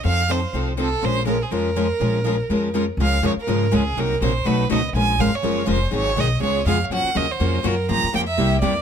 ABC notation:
X:1
M:4/4
L:1/16
Q:"Swing" 1/4=245
K:Bbm
V:1 name="Violin"
f4 c4 z4 =A4 | c4 B2 A2 B8- | B12 z4 | [K:Db] f4 d2 B6 A4 |
B4 c4 _c4 e3 z | a4 f2 d6 c4 | d4 e4 d4 f3 z | g4 e2 c6 B4 |
b4 =g2 _f6 =d4 |]
V:2 name="Steel-string acoustic guitar"
[F,CE=A]2 z2 [F,CEA]2 z2 [F,CEA]2 z2 [F,CEA]2 z2 | [F,A,DFB]2 z2 [F,A,DFB]2 z2 [F,A,DFB]2 z2 [F,A,DFB]2 z2 | [F,A,DFB]2 z2 [F,A,DFB]2 z2 [F,A,DFB]2 z2 [F,A,DFB]2 z2 | [K:Db] [D,F,A,DFB]2 z2 [D,F,A,DFB]2 z2 [D,F,A,DFB]2 z2 [D,F,A,DFB]2 z2 |
[C,G,B,EB]2 z2 [C,G,B,EB]2 z2 [_C,G,=A,EG_c]2 z2 [C,G,A,EGc]2 z2 | [F,A,DFB]2 z2 [F,A,DFB]2 z2 [F,A,DFB]2 z2 [F,A,DFB]2 z2 | [E,G,_CEA]2 z2 [E,G,CEA]2 z2 [D,A,CFA]2 z2 [D,A,CFA]2 z2 | [G,DFB]2 z2 [G,DFB]2 z2 [G,DFB]2 z2 [G,DFB]2 z2 |
[D,F,B,F=G]2 z2 [D,F,B,FG]2 z2 [C,=G,B,=EG]2 z2 [C,G,B,EG]2 z2 |]
V:3 name="Steel-string acoustic guitar"
[F,CE=A]2 z2 [F,CEA]2 z2 [F,CEA]2 z2 [F,CEA]2 z2 | [F,A,DFB]2 z2 [F,A,DFB]2 z2 [F,A,DFB]2 z2 [F,A,DFB]2 z2 | [F,A,DFB]2 z2 [F,A,DFB]2 z2 [F,A,DFB]2 z2 [F,A,DFB]2 z2 | [K:Db] [D,F,A,DFB]2 z2 [D,F,A,DFB]2 z2 [D,F,A,DFB]2 z2 [D,F,A,DFB]2 z2 |
[C,G,B,EB]2 z2 [C,G,B,EB]2 z2 [_C,G,=A,EG]2 z2 [C,G,A,EG]2 z2 | [F,A,DFB]2 z2 [F,A,DFB]2 z2 [F,A,DFB]2 z2 [F,A,DFB]2 z2 | [E,G,_CEA]2 z2 [E,G,CEA]2 z2 [D,A,CFA]2 z2 [D,A,CFA]2 z2 | [D,F,B,DG]2 z2 [D,F,B,DG]2 z2 [D,F,B,DG]2 z2 [D,F,B,DG]2 z2 |
[D,F,B,F=G]2 z2 [D,F,B,FG]2 z2 [C,=G,B,=EG]2 z2 [C,G,B,EG]2 z2 |]
V:4 name="Upright bass" clef=bass
F,,8 C,,8 | B,,,8 F,,8 | B,,,8 F,,8 | [K:Db] D,,4 F,,2 z2 A,,4 D,,4 |
C,,4 B,,,4 _C,,4 D,,4 | B,,,4 A,,,2 z2 G,,,4 F,,,4 | A,,,4 _C,,4 D,,4 F,,4 | G,,2 z2 E,,4 F,,4 G,,4 |
=G,,2 z2 F,,4 C,,4 =E,,4 |]